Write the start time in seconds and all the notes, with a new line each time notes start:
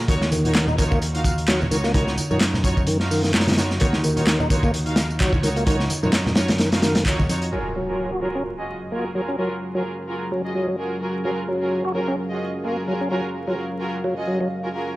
0.08 D#2 D#3 D#4 F4 F#4 C#5, kick, closed hi-hat, tambourine
0.22 snare, tambourine
0.32 D#3, closed hi-hat, tambourine, high conga
0.45 D#4 F4 F#4 C#5, closed hi-hat, tambourine, low conga
0.55 snare, clap, closed hi-hat, tambourine
0.67 D#4, tambourine, low conga
0.78 D#3 D#4 F4 F#4 C#5, kick, closed hi-hat, tambourine
0.91 A#3, kick, tambourine, high conga
1.02 closed hi-hat, tambourine
1.15 D#4 F4 F#4 F5, closed hi-hat, tambourine
1.24 kick, closed hi-hat, tambourine
1.38 closed hi-hat, tambourine
1.47 F#3 D#4 F4 F#4 C#5, snare, clap, closed hi-hat, tambourine
1.61 tambourine, high conga, low conga
1.71 C#2 D#3 D#4 F4 F#4 C#5, closed hi-hat, tambourine
1.84 A#3, snare, tambourine
1.94 D#3 D#4 F4 F#4 C#5, kick, closed hi-hat, tambourine
2.07 snare, tambourine
2.18 closed hi-hat, tambourine, high conga
2.31 F#2 D#3 D#4 F4 F#4 C#5, tambourine, low conga
2.40 snare, clap, closed hi-hat, tambourine
2.54 snare, tambourine, low conga
2.64 D#4 F4 F#4 C#5, kick, closed hi-hat, tambourine
2.77 kick, tambourine, high conga
2.87 D#3, closed hi-hat, tambourine
3.00 D#4 F4 F#4 F5, snare, tambourine
3.11 D#3, open hi-hat, tambourine
3.24 D#3, snare, tambourine
3.34 D#4 F4 F#4 C#5, snare, clap, closed hi-hat, tambourine
3.40 snare, closed hi-hat
3.47 snare, closed hi-hat, tambourine, high conga, low conga
3.52 snare, closed hi-hat
3.57 D#4 F4 F#4 C#5, snare, closed hi-hat, tambourine
3.71 snare, tambourine
3.80 D#2 D#3 D#4 F4 F#4 C#5, kick, closed hi-hat, tambourine
3.93 snare, tambourine
4.04 D#3, closed hi-hat, tambourine, high conga
4.16 D#4 F4 F#4 C#5, closed hi-hat, tambourine, low conga
4.27 snare, clap, closed hi-hat, tambourine
4.40 D#4, tambourine, low conga
4.50 D#3 D#4 F4 F#4 C#5, kick, closed hi-hat, tambourine
4.63 A#3, kick, tambourine, high conga
4.74 closed hi-hat, tambourine
4.86 D#4 F4 F#4 F5, closed hi-hat, tambourine
4.96 snare, closed hi-hat, tambourine
5.10 tambourine
5.20 F#3 D#4 F4 F#4 C#5, kick, clap, closed hi-hat, tambourine
5.33 kick, tambourine, high conga, low conga
5.43 C#2 D#3 D#4 F4 F#4 C#5, closed hi-hat, tambourine
5.56 A#3, closed hi-hat, tambourine
5.67 D#3 D#4 F4 F#4 C#5, kick, closed hi-hat, tambourine
5.80 snare, tambourine
5.90 closed hi-hat, tambourine, high conga
6.03 F#2 D#3 D#4 F4 F#4 C#5, tambourine, low conga
6.13 snare, clap, closed hi-hat, tambourine
6.26 snare, tambourine, low conga
6.35 D#4 F4 F#4 C#5, snare, closed hi-hat, tambourine
6.48 snare, closed hi-hat, tambourine, high conga
6.58 D#3, snare, closed hi-hat, tambourine
6.72 D#4 F4 F#4 F5, snare, closed hi-hat, tambourine
6.82 D#3, snare, closed hi-hat, tambourine
6.95 D#3, snare, closed hi-hat, tambourine
7.05 D#2 D#4 F4 F#4 C#5, kick, clap, closed hi-hat, tambourine
7.19 kick, tambourine, high conga, low conga
7.29 F2 D#4 F4 F#4 C#5, closed hi-hat, tambourine
7.42 closed hi-hat, tambourine
7.52 F#3 C#4 F4 F#4 G#4 A#4 F5, impact
7.76 F#3
7.89 F4 F#4 G#4 A#4
8.12 F#4
8.22 F#3 F4 F#4 G#4 A#4
8.35 C#4
8.59 F4 F#4 G#4 D#5
8.92 A#3 F4 F#4 G#4 A#4
9.15 F#3 F4 F#4 G#4 A#4
9.28 C#4
9.38 F#3 F4 F#4 G#4 A#4
9.75 F#3 F4 F#4 G#4 A#4
10.09 F4 F#4 G#4 A#4
10.32 F#3
10.45 F4 F#4 G#4 D#5
10.55 F#3
10.68 F#3
10.79 F4 F#4 G#4 A#4
11.02 F4 F#4 G#4 A#4
11.25 F#3 F4 F#4 G#4 A#4
11.48 F#3
11.61 F4 F#4 G#4 A#4
11.85 F#4
11.95 F#3 F4 F#4 G#4 A#4
12.08 C#4
12.31 F4 F#4 G#4 D#5
12.64 A#3 F4 F#4 G#4 A#4
12.88 F#3 F4 F#4 G#4 A#4
13.01 C#4
13.11 F#3 F4 F#4 G#4 A#4
13.48 F#3 F4 F#4 G#4 A#4
13.81 F4 F#4 G#4 A#4
14.04 F#3
14.17 F4 F#4 G#4 D#5
14.27 F#3
14.40 F#3
14.64 F4 F#4 G#4 A#4
14.74 F4 F#4 G#4 A#4